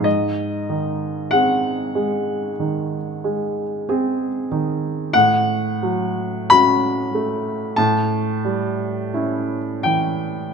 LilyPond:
<<
  \new Staff \with { instrumentName = "Grand piano" } { \time 4/4 \key aes \mixolydian \tempo 4 = 47 ees''4 ges''2. | \key a \lydian fis''4 b''4 a''4. g''8 | }
  \new Staff \with { instrumentName = "Grand piano" } { \clef bass \time 4/4 \key aes \mixolydian aes,8 ees8 <c' aes'>8 aes8 ees8 aes8 <c' aes'>8 ees8 | \key a \lydian a,8 fis8 <cis' fis'>8 a8 a,8 g8 <cis' e'>8 e8 | }
>>